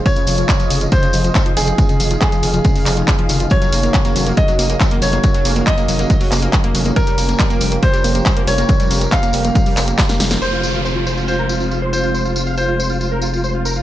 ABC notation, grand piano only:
X:1
M:4/4
L:1/8
Q:1/4=139
K:Fm
V:1 name="Grand piano"
d4 c3 A- | A2 A6 | d4 e3 d- | d2 e6 |
B4 c3 d- | d2 f6 | c4 c3 c- | c2 c6 |]